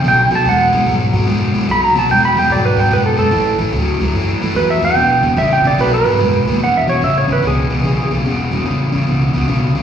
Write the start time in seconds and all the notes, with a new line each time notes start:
0.04 B1 B2 F#3
0.08 G5
0.31 B1 B2 F#3
0.35 A5
0.45 E2 B2 G#3 F#5
0.73 E2 B2 G#3
0.86 G#2 B2 F#3
1.13 G#2 B2 F#3
1.27 F#2 B2 G#3
1.54 F#2 B2 G#3
1.68 B1 B2 F#3 B5
1.84 A#5
1.95 B1 B2 F#3 A5
2.09 E2 B2 G#3 G5
2.25 B5
2.35 E2 B2 G#3 G5
2.50 G#2 B2 F#3 D5
2.65 B4
2.76 G#2 B2 F#3 G5
2.91 F#2 B2 G#3 B4
3.06 A4
3.17 F#2 B2 G#3 A4
3.31 A1 A2 E3
3.58 A1 A2 E3
3.72 D2 A2 F#3
3.99 D2 A2 F#3
4.13 F#2 A2 E3
4.41 F#2 A2 E3
4.54 E2 A2 F#3 B4
4.70 E5
4.81 E2 A2 F#3 G5
4.95 E1 E2 B2
5.22 E1 E2 B2
5.36 A1 E2 C#3 E5
5.53 G5
5.64 A1 E2 C#3 D5
5.78 B1 B2 F#3 B4
5.94 B4
6.04 G#2 B2 F#3
6.19 F#2 B2 G#3
6.45 D#2 B2 G#3
6.59 E1 E2 B2
6.64 F#5
6.77 E5
6.87 E1 E2 B2 C#5
7.01 A1 E2 C#3 E5
7.18 C#5
7.28 A1 E2 C#3
7.32 B4
7.42 C#2 E2 B2
7.47 G#4
7.70 C#2 E2 B2
7.83 B1 E2 C#3
8.11 B1 E2 C#3
8.25 E1 E2 B2
8.51 E1 E2 B2
8.65 A1 E2 C#3
8.92 A1 E2 C#3
9.07 C#2 E2 B2
9.33 C#2 E2 B2
9.48 B1 E2 C#3
9.75 B1 E2 C#3